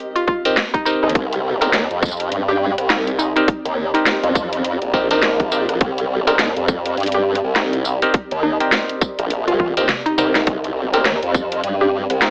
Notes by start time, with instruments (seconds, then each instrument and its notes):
Already playing: clav C4 D#4 G4 A#4, ambient pad C4 G4 D#5
0.16 synth pluck F4, closed hi-hat
0.27 synth pluck F4, kick
0.45 clav C4 D#4 G4 A#4, closed hi-hat
0.57 snare, closed hi-hat
0.74 synth pluck D#4, kick, closed hi-hat
0.85 clav C4 D#4 G4 A#4, synth pluck D#4, tambourine
1.03 wobble bass D#2, synth pluck D#4, cross-stick
1.09 closed hi-hat
1.15 wobble bass C2, kick, closed hi-hat
1.33 closed hi-hat
1.61 clav C4 D#4 G4 A#4, synth pluck A#4, closed hi-hat
1.69 ambient pad D5
1.73 wobble bass D#2, snare, closed hi-hat
1.91 wobble bass F2, closed hi-hat
2.03 kick, cross-stick, tambourine
2.05 tambourine
2.08 tambourine
2.11 tambourine
2.17 closed hi-hat, tambourine
2.31 wobble bass G2, closed hi-hat
2.48 synth pluck G4, cross-stick
2.78 wobble bass C2, cross-stick, closed hi-hat
2.90 synth pluck D#4, snare, closed hi-hat
3.07 closed hi-hat
3.19 synth pluck D#4, tambourine
3.36 clav C4 D#4 G4 A#4, synth pluck D#4, closed hi-hat
3.48 kick, closed hi-hat
3.65 wobble bass D#2, closed hi-hat
3.94 clav C4 D#4 G4 A#4, synth pluck D#4, closed hi-hat
4.06 snare, closed hi-hat
4.23 wobble bass F2, closed hi-hat
4.35 kick, tambourine
4.53 closed hi-hat
4.64 closed hi-hat
4.82 wobble bass A#1, closed hi-hat
4.94 clav C4 D#4 G4 A#4, kick
5.11 clav C4 D#4 G4 A#4, synth pluck D#4, closed hi-hat
5.22 snare, closed hi-hat
5.40 kick, closed hi-hat
5.52 clav C4 D#4 G4 A#4, tambourine
5.69 wobble bass A#1, cross-stick, closed hi-hat
5.81 wobble bass C2, kick, closed hi-hat
5.98 closed hi-hat
6.27 clav C4 D#4 G4 A#4, synth pluck A#4, closed hi-hat
6.39 wobble bass D#2, snare, closed hi-hat
6.57 wobble bass F2, closed hi-hat
6.68 kick, cross-stick, tambourine
6.86 closed hi-hat
6.97 wobble bass G2, closed hi-hat
7.00 closed hi-hat
7.03 closed hi-hat
7.06 closed hi-hat
7.12 synth pluck G4, cross-stick, closed hi-hat
7.35 cross-stick, closed hi-hat
7.44 wobble bass C2
7.56 synth pluck D#4, snare, closed hi-hat
7.73 closed hi-hat
7.85 tambourine
8.02 clav C4 D#4 G4 A#4, closed hi-hat
8.14 kick, closed hi-hat
8.31 wobble bass D#2, closed hi-hat
8.43 synth pluck D#4
8.60 clav C4 D#4 G4 A#4, closed hi-hat
8.72 snare, closed hi-hat
8.89 closed hi-hat
9.01 kick, tambourine
9.19 wobble bass A#1, closed hi-hat
9.30 closed hi-hat
9.48 wobble bass C2, synth pluck F4, closed hi-hat
9.59 synth pluck F4, kick, high tom
9.77 wobble bass D#2, clav C4 D#4 G4 A#4, closed hi-hat
9.89 snare, closed hi-hat, mid tom
10.06 synth pluck D#4, closed hi-hat
10.18 wobble bass C2, clav C4 D#4 G4 A#4, synth pluck D#4, mid tom, tambourine
10.35 synth pluck D#4, cross-stick, snare, closed hi-hat
10.47 wobble bass C2, kick, closed hi-hat
10.64 closed hi-hat
10.93 clav C4 D#4 G4 A#4, synth pluck A#4, closed hi-hat
11.01 wobble bass D#2, ambient pad D#5
11.05 snare, closed hi-hat
11.23 wobble bass F2, closed hi-hat
11.34 kick, cross-stick, tambourine
11.52 closed hi-hat
11.63 wobble bass G2, closed hi-hat
11.81 synth pluck G4, cross-stick
12.10 wobble bass C2, cross-stick, closed hi-hat
12.22 synth pluck D#4, snare, closed hi-hat